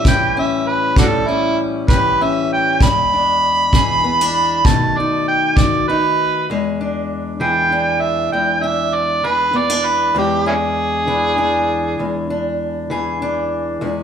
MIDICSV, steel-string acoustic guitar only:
0, 0, Header, 1, 2, 480
1, 0, Start_track
1, 0, Tempo, 611621
1, 2208, Time_signature, 12, 3, 24, 8
1, 11012, End_track
2, 0, Start_track
2, 0, Title_t, "Steel-string acoustic guitar"
2, 0, Program_c, 0, 25
2, 0, Note_on_c, 0, 45, 82
2, 0, Note_on_c, 0, 55, 66
2, 0, Note_on_c, 0, 61, 49
2, 45, Note_on_c, 0, 52, 75
2, 51, Note_on_c, 0, 67, 69
2, 280, Note_off_c, 0, 61, 0
2, 290, Note_on_c, 0, 61, 64
2, 752, Note_off_c, 0, 45, 0
2, 762, Note_off_c, 0, 55, 0
2, 762, Note_on_c, 0, 45, 57
2, 771, Note_on_c, 0, 55, 58
2, 998, Note_off_c, 0, 61, 0
2, 1008, Note_on_c, 0, 61, 57
2, 1478, Note_off_c, 0, 52, 0
2, 1484, Note_off_c, 0, 67, 0
2, 1488, Note_on_c, 0, 52, 63
2, 1493, Note_on_c, 0, 67, 70
2, 1728, Note_off_c, 0, 61, 0
2, 1737, Note_on_c, 0, 61, 65
2, 2180, Note_off_c, 0, 52, 0
2, 2183, Note_off_c, 0, 67, 0
2, 2185, Note_off_c, 0, 61, 0
2, 2206, Note_off_c, 0, 45, 0
2, 2206, Note_on_c, 0, 40, 80
2, 2208, Note_off_c, 0, 55, 0
2, 2211, Note_on_c, 0, 56, 68
2, 2458, Note_on_c, 0, 62, 51
2, 2933, Note_on_c, 0, 52, 68
2, 2938, Note_on_c, 0, 68, 69
2, 3168, Note_off_c, 0, 62, 0
2, 3171, Note_on_c, 0, 59, 53
2, 3304, Note_off_c, 0, 59, 0
2, 3304, Note_on_c, 0, 62, 49
2, 3623, Note_off_c, 0, 52, 0
2, 3623, Note_off_c, 0, 56, 0
2, 3626, Note_off_c, 0, 68, 0
2, 3649, Note_off_c, 0, 40, 0
2, 3657, Note_off_c, 0, 62, 0
2, 3660, Note_on_c, 0, 47, 56
2, 3671, Note_on_c, 0, 51, 58
2, 3676, Note_on_c, 0, 57, 55
2, 3680, Note_on_c, 0, 63, 55
2, 3906, Note_off_c, 0, 63, 0
2, 3923, Note_on_c, 0, 63, 61
2, 4374, Note_off_c, 0, 51, 0
2, 4376, Note_off_c, 0, 47, 0
2, 4382, Note_on_c, 0, 51, 58
2, 4387, Note_on_c, 0, 66, 59
2, 4618, Note_off_c, 0, 63, 0
2, 4627, Note_on_c, 0, 63, 65
2, 5068, Note_off_c, 0, 51, 0
2, 5069, Note_off_c, 0, 66, 0
2, 5071, Note_off_c, 0, 63, 0
2, 5075, Note_off_c, 0, 57, 0
2, 5099, Note_on_c, 0, 40, 78
2, 5107, Note_on_c, 0, 56, 69
2, 5342, Note_on_c, 0, 62, 55
2, 5806, Note_on_c, 0, 52, 68
2, 5812, Note_on_c, 0, 68, 64
2, 6058, Note_off_c, 0, 62, 0
2, 6062, Note_on_c, 0, 62, 61
2, 6529, Note_off_c, 0, 40, 0
2, 6533, Note_on_c, 0, 40, 61
2, 6538, Note_off_c, 0, 56, 0
2, 6541, Note_on_c, 0, 56, 53
2, 6774, Note_off_c, 0, 62, 0
2, 6777, Note_on_c, 0, 62, 53
2, 7249, Note_off_c, 0, 52, 0
2, 7253, Note_off_c, 0, 68, 0
2, 7253, Note_on_c, 0, 52, 62
2, 7256, Note_on_c, 0, 68, 63
2, 7479, Note_off_c, 0, 62, 0
2, 7483, Note_on_c, 0, 59, 64
2, 7610, Note_off_c, 0, 59, 0
2, 7610, Note_on_c, 0, 62, 48
2, 7959, Note_off_c, 0, 40, 0
2, 7962, Note_on_c, 0, 40, 90
2, 7969, Note_off_c, 0, 56, 0
2, 7969, Note_off_c, 0, 62, 0
2, 7972, Note_on_c, 0, 56, 70
2, 8210, Note_on_c, 0, 62, 63
2, 8234, Note_off_c, 0, 52, 0
2, 8234, Note_off_c, 0, 68, 0
2, 8688, Note_on_c, 0, 52, 64
2, 8691, Note_off_c, 0, 62, 0
2, 8694, Note_on_c, 0, 62, 57
2, 8927, Note_off_c, 0, 62, 0
2, 8930, Note_on_c, 0, 62, 55
2, 9408, Note_off_c, 0, 40, 0
2, 9412, Note_on_c, 0, 40, 64
2, 9414, Note_off_c, 0, 56, 0
2, 9418, Note_on_c, 0, 56, 47
2, 9652, Note_off_c, 0, 62, 0
2, 9655, Note_on_c, 0, 62, 62
2, 10120, Note_off_c, 0, 52, 0
2, 10123, Note_on_c, 0, 52, 69
2, 10133, Note_on_c, 0, 68, 67
2, 10372, Note_off_c, 0, 62, 0
2, 10375, Note_on_c, 0, 62, 70
2, 10836, Note_off_c, 0, 40, 0
2, 10839, Note_on_c, 0, 40, 90
2, 10841, Note_off_c, 0, 56, 0
2, 10844, Note_on_c, 0, 56, 64
2, 10863, Note_off_c, 0, 62, 0
2, 11012, Note_off_c, 0, 40, 0
2, 11012, Note_off_c, 0, 52, 0
2, 11012, Note_off_c, 0, 56, 0
2, 11012, Note_off_c, 0, 68, 0
2, 11012, End_track
0, 0, End_of_file